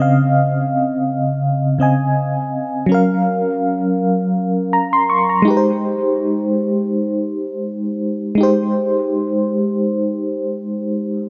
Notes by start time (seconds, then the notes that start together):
Already playing: C#3 C4
0.00 D#5 F5
1.79 C#3 C4 D#5 G#5
2.86 F#3 C#4
2.92 A#4 F5
4.73 A#5
4.93 C6
5.10 C#6
5.29 A#5
5.42 G#3 D#4
5.48 G4 B4
5.57 C5
8.35 G#3 D#4
8.41 G4 C5